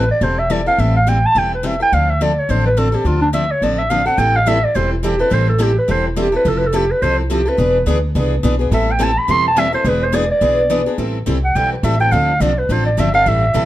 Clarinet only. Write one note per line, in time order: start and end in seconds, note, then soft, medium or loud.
0.11 0.25 D5 loud
0.24 0.40 C5 medium
0.39 0.53 E5 loud
0.52 0.67 D5 medium
0.67 0.81 F5 medium
0.79 0.95 E5 medium
0.96 1.10 F5 medium
1.09 1.27 G5 medium
1.26 1.39 A5 loud
1.38 1.53 G5 medium
1.55 1.68 B4 medium
1.67 1.81 E5 medium
1.83 1.95 G5 medium
1.94 2.11 F5 medium
2.10 2.24 E5 medium
2.22 2.41 D5 medium
2.39 2.52 C#5 medium
2.51 2.66 C5 medium
2.66 2.80 B4 medium
2.78 2.96 A4 medium
2.95 3.08 G4 medium
3.06 3.21 F4 medium
3.22 3.29 D4 medium
3.34 3.53 E5 medium
3.51 3.65 C#5 medium
3.64 3.80 D5 medium
3.78 3.91 E5 medium
3.90 4.06 F5 medium
4.06 4.20 F#5 medium
4.18 4.38 G5 loud
4.36 4.49 F5 medium
4.48 4.65 E5 medium
4.64 4.77 D5 medium
4.76 4.92 C5 medium
4.93 5.06 E4 soft
5.04 5.20 G4 medium
5.21 5.34 B4 medium
5.33 5.48 C5 medium
5.49 5.64 A4 medium
5.63 5.78 G4 medium
5.78 5.92 B4 medium
5.91 6.06 C5 medium
6.08 6.22 E4 soft
6.20 6.35 G4 medium
6.36 6.50 B4 medium
6.49 6.60 A4 medium
6.58 6.68 B4 medium
6.67 6.78 A4 medium
6.76 6.92 G4 medium
6.91 7.04 B4 medium
7.02 7.18 C5 loud
7.19 7.33 E4 soft
7.31 7.50 G4 medium
7.48 7.88 B4 medium
8.74 8.93 E5 medium
8.91 9.05 G5 medium
9.03 9.20 A5 medium
9.18 9.32 B5 loud
9.31 9.46 C6 loud
9.48 9.61 A5 loud
9.59 9.74 E5 medium
9.74 9.90 C5 medium
9.88 10.05 B4 medium
10.03 10.16 C5 medium
10.15 10.30 D5 medium
10.31 10.95 D5 medium
11.44 11.58 F#5 medium
11.56 11.71 G5 loud
11.72 11.86 B4 medium
11.84 12.00 E5 medium
12.01 12.13 G5 loud
12.12 12.43 F5 medium
12.41 12.60 D5 medium
12.58 12.73 B4 medium
12.72 12.85 C5 medium
12.86 13.01 D5 medium
13.00 13.14 E5 medium
13.15 13.29 F5 loud
13.28 13.65 E5 medium